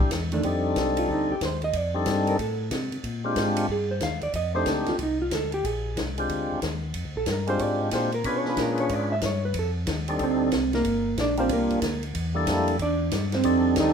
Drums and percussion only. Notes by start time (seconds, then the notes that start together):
0.11 kick, snare, hi-hat pedal, ride
0.32 ride
0.43 kick, ride
0.76 kick, snare, hi-hat pedal, ride
0.97 ride
1.09 kick
1.41 kick, snare, hi-hat pedal, ride
1.62 ride
1.73 kick, ride
2.06 kick, snare, hi-hat pedal, ride
2.27 ride
2.39 kick, ride
2.71 kick, snare, hi-hat pedal, ride
2.92 ride
3.04 kick, ride
3.36 kick, snare, hi-hat pedal, ride
3.56 ride
3.69 kick
4.00 kick, snare, hi-hat pedal, ride
4.21 ride
4.33 kick, ride
4.66 kick, snare, hi-hat pedal, ride
4.86 snare, ride
4.99 kick, ride
5.31 kick, snare, hi-hat pedal, ride
5.52 ride
5.65 kick, ride
5.97 kick, snare, hi-hat pedal, ride
6.18 ride
6.29 kick, ride
6.62 kick, snare, hi-hat pedal, ride
6.94 kick, ride
7.26 kick, snare, hi-hat pedal, ride
7.47 ride
7.59 kick, ride
7.91 kick, snare, hi-hat pedal, ride
8.12 ride
8.24 kick, ride
8.45 snare
8.57 kick, snare, hi-hat pedal, ride
8.78 ride
8.89 kick, ride
9.21 kick, snare, hi-hat pedal, ride
9.54 kick, ride
9.87 kick, snare, hi-hat pedal, ride
10.08 ride
10.19 kick, ride
10.52 kick, snare, hi-hat pedal, ride
10.73 snare, ride
10.85 kick, ride
11.17 kick, snare, hi-hat pedal, ride
11.37 ride
11.49 kick, ride
11.70 ride
11.82 kick, snare, hi-hat pedal, ride
12.03 ride
12.15 kick, ride
12.47 kick, snare, hi-hat pedal, ride
12.68 ride
12.79 kick, ride
13.11 kick, snare, hi-hat pedal, ride
13.32 snare, ride
13.43 kick, ride
13.76 kick, snare, hi-hat pedal, ride